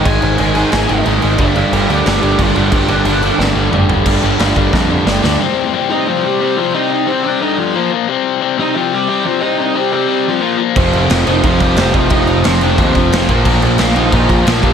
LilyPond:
<<
  \new Staff \with { instrumentName = "Lead electric guitar" } { \time 4/4 \key c \minor \tempo 4 = 179 aes''2. r4 | <d'' f''>8 <d'' f''>8 <d'' f''>8 <d' g'>8 <d' g'>8 <d' g'>8 <d' f'>8 <d' f'>8 | <d' f'>8 d'2 r4. | r1 |
r4. <ees' ees''>8 <f f'>8 <g g'>4 <f f'>8 | <ees' ees''>8 <ees' ees''>8 <c' c''>8 <d' d''>8 <ees' ees''>8 <f f'>4 r8 | r4. <ees' ees''>8 <f f'>8 <g g'>4 <f f'>8 | <ees' ees''>8 <ees' ees''>8 <g g'>8 <g g'>4 <f f'>4 r8 |
r4. <ees' ees''>8 <f f'>8 <g g'>4 <f f'>8 | <ees' ees''>8 <ees' ees''>8 <c' c''>8 <d' d''>4 <f f'>4 r8 | r4. <ees' ees''>8 <ees' ees''>8 <f f'>4 <g g'>8 | }
  \new Staff \with { instrumentName = "Overdriven electric guitar" } { \clef bass \time 4/4 \key c \minor <aes, ees aes>8 <aes, ees aes>8 <aes, ees aes>8 <aes, ees aes>8 <aes, ees aes>8 <aes, ees aes>8 <aes, ees aes>8 <aes, ees aes>8 | <g, d g>8 <g, d g>8 <g, d g>8 <g, d g>8 <g, d g>8 <g, d g>8 <g, d g>8 <g, d g>8 | <g, d g>8 <g, d g>8 <g, d g>8 <g, d g>8 <g, d g>8 <g, d g>8 <g, d g>8 <g, d g>8 | <g, d g>8 <g, d g>8 <g, d g>8 <g, d g>8 <g, d g>8 <g, d g>8 <g, d g>8 <g, d g>8 |
<c g c'>4 <c g c'>8 <c g c'>8 <c g c'>4 <c g c'>8 <c g c'>8 | <c g c'>4 <c g c'>8 <c g c'>8 <g, d g>4 <bes, f bes>8 <bes, f bes>8 | <c g c'>4 <c g c'>8 <c g c'>8 <c g c'>4 <c g c'>8 <c g c'>8 | <c g c'>4 <c g c'>8 <c g c'>8 <c g c'>4 <bes, f bes>8 <bes, f bes>8 |
<f, c f>4 <f, c f>8 <f, c f>8 <f, c f>4 <f, c f>8 <f, c f>8 | <f, c f>4 <f, c f>8 <f, c f>8 <f, c f>4 <f, c f>8 <bes, f bes>8 | <bes, f bes>4 <bes, f bes>8 <bes, f bes>8 <bes, f bes>4 <bes, f bes>8 <bes, f bes>8 | }
  \new Staff \with { instrumentName = "Overdriven electric guitar" } { \clef bass \time 4/4 \key c \minor <aes, ees aes>8 <aes, ees aes>8 <aes, ees aes>8 <aes, ees aes>8 <aes, ees aes>8 <aes, ees aes>8 <aes, ees aes>8 <aes, ees aes>8 | <g, d g>8 <g, d g>8 <g, d g>8 <g, d g>8 <g, d g>8 <g, d g>8 <g, d g>8 <g, d g>8 | <g, d g>8 <g, d g>8 <g, d g>8 <g, d g>8 <g, d g>8 <g, d g>8 <g, d g>8 <g, d g>8 | <g, d g>8 <g, d g>8 <g, d g>8 <g, d g>8 <g, d g>8 <g, d g>8 <g, d g>8 <g, d g>8 |
r1 | r1 | r1 | r1 |
<f, c f>4 <f, c f>8 <f, c f>8 <f, c f>4 <f, c f>8 <f, c f>8 | <f, c f>4 <f, c f>8 <f, c f>8 <f, c f>4 <f, c f>8 <bes, f bes>8 | <bes, f bes>4 <bes, f bes>8 <bes, f bes>8 <bes, f bes>4 <bes, f bes>8 <bes, f bes>8 | }
  \new Staff \with { instrumentName = "Picked electric bass" } { \clef bass \time 4/4 \key c \minor aes,,8 aes,,8 aes,,4 aes,,8 aes,,8 aes,,8 aes,,8 | g,,4 g,,8 d,8 g,,8 g,,8 g,,8 g,,8 | g,,8 g,,8 g,,4 g,,8 g,,8 g,,8 g,,8 | g,,8 g,,8 g,,8 g,,8 f,4 g,,8 d,8 |
r1 | r1 | r1 | r1 |
f,,8 f,,8 f,,8 f,,8 f,,8 f,,8 f,,8 f,,8 | f,,4 f,,4 ees,8 f,,8 f,,8 bes,,8 | bes,,8 bes,,8 bes,,8 bes,,8 bes,,8 bes,,8 bes,,8 bes,,8 | }
  \new DrumStaff \with { instrumentName = "Drums" } \drummode { \time 4/4 <cymc bd>8 cymc8 cymc8 cymc8 <cymc sn>8 cymc8 cymc8 cymc8 | <cymc bd>8 cymc8 cymc8 cymc8 <cymc sn>8 cymc8 <cymc bd>8 cymc8 | <cymc bd>8 cymc8 cymc8 cymc8 sn4 toml8 tomfh8 | <cymc bd>8 cymc8 <cymc sn>8 <cymc bd>8 <bd sn>4 sn8 sn8 |
r4 r4 r4 r4 | r4 r4 r4 r4 | r4 r4 r4 r4 | r4 r4 r4 r4 |
<cymc bd>8 cymc8 <cymc sn>8 cymc8 <cymc bd>8 <cymc bd>8 <cymc sn>8 <cymc bd>8 | <cymc bd>8 cymc8 <cymc sn>8 cymc8 <cymc bd>8 <cymc bd>8 <cymc sn>8 <cymc bd>8 | <cymc bd>8 cymc8 <cymc sn>8 cymc8 <cymc bd>8 <cymc bd>8 <cymc sn>8 <cymc bd>8 | }
>>